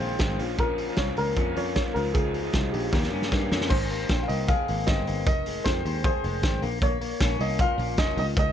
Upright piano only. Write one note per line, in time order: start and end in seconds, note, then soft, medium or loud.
0.00 0.36 C5 loud
0.60 0.99 A#4 medium
0.98 1.18 C#5 medium
1.18 1.58 A#4 loud
1.57 1.74 C#5 medium
1.76 1.81 C#5 loud
1.94 2.15 A#4 medium
2.14 2.75 G#4 medium
2.72 3.47 G4 medium
3.70 4.20 C5 medium
4.23 4.28 F5 medium
4.28 4.49 D#5 medium
4.48 4.85 F5 loud
4.87 5.23 D#5 medium
5.27 5.63 D#5 loud
5.64 6.03 C5 loud
6.05 6.59 C5 medium
6.83 7.43 C#5 loud
7.41 7.61 D#5 medium
7.60 8.00 F5 loud
7.98 8.18 D#5 loud
8.19 8.24 D#5 loud
8.39 8.52 D#5 loud